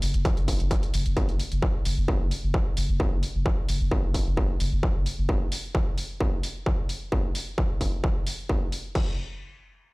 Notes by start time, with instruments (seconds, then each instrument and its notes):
0.02 sub bass F#1, open hi-hat
0.14 sub bass F#1, closed hi-hat
0.25 kick, closed hi-hat
0.37 sub bass F#1, closed hi-hat
0.48 kick, open hi-hat
0.60 sub bass F#1, closed hi-hat
0.71 kick, closed hi-hat
0.83 closed hi-hat
0.94 sub bass F#1, open hi-hat
1.06 sub bass F#1, closed hi-hat
1.17 kick, closed hi-hat
1.29 sub bass F#1, closed hi-hat
1.40 open hi-hat
1.52 sub bass F#1, closed hi-hat
1.62 kick
1.85 sub bass F#1, open hi-hat
1.97 sub bass F#1
2.08 kick
2.20 sub bass F#1
2.31 open hi-hat
2.43 sub bass F#1
2.54 kick
2.77 sub bass F#1, open hi-hat
2.89 sub bass F#1
3.00 kick
3.12 sub bass F#1
3.23 open hi-hat
3.35 sub bass F#1
3.46 kick
3.68 sub bass F#1, open hi-hat
3.81 sub bass F#1
3.91 kick
4.03 sub bass F#1
4.14 kick, open hi-hat
4.26 sub bass F#1
4.37 kick
4.60 sub bass F#1, open hi-hat
4.72 sub bass F#1
4.83 kick
4.95 sub bass F#1
5.06 open hi-hat
5.18 sub bass F#1
5.29 kick
5.52 open hi-hat
5.75 kick
5.98 open hi-hat
6.20 kick
6.43 open hi-hat
6.66 kick
6.89 open hi-hat
7.12 kick
7.35 open hi-hat
7.58 kick
7.81 kick, open hi-hat
8.04 kick
8.27 open hi-hat
8.49 kick
8.72 open hi-hat
8.95 kick, crash